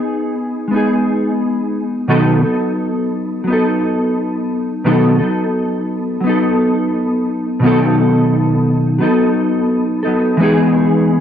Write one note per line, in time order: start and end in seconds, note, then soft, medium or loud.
0.00 0.71 B3 soft
0.00 0.74 D#4 soft
0.00 0.70 G#4 medium
0.68 2.07 G#3 medium
0.68 2.09 B3 medium
0.74 2.10 D#4 medium
0.74 2.10 G#4 medium
2.08 2.43 B2 medium
2.08 2.43 D#3 medium
2.08 2.44 F#3 medium
2.08 2.44 B3 medium
2.08 2.43 D#4 medium
2.08 2.41 A4 medium
2.42 3.44 F#3 soft
2.42 3.47 B3 soft
2.42 3.50 D#4 soft
2.42 3.50 A4 medium
3.44 4.85 F#3 medium
3.44 4.86 B3 medium
3.50 4.86 D#4 medium
3.50 4.87 A4 medium
4.84 5.19 B2 medium
4.84 5.20 D#3 medium
4.84 5.20 F#3 medium
4.84 5.20 B3 medium
4.84 5.19 D#4 medium
4.84 5.18 A4 medium
5.19 6.20 F#3 soft
5.19 6.23 B3 soft
5.19 6.26 D#4 soft
5.19 6.27 A4 medium
6.20 7.62 F#3 medium
6.20 7.64 B3 medium
6.27 7.65 D#4 medium
6.27 7.65 A4 medium
7.60 8.99 B2 medium
7.60 9.06 D#3 medium
7.60 8.97 F#3 medium
7.64 9.00 B3 loud
7.64 9.01 D#4 loud
7.64 9.02 A4 loud
8.99 10.03 F#3 medium
8.99 10.05 B3 medium
8.99 10.04 D#4 medium
9.03 10.02 A4 medium
10.03 10.39 B3 soft
10.03 10.39 D#4 medium
10.03 10.38 A4 medium
10.07 10.39 F#3 soft
10.37 11.20 E3 loud
10.37 11.20 G#3 medium
10.37 11.20 B3 loud
10.42 11.20 D#4 medium
10.42 11.20 G#4 loud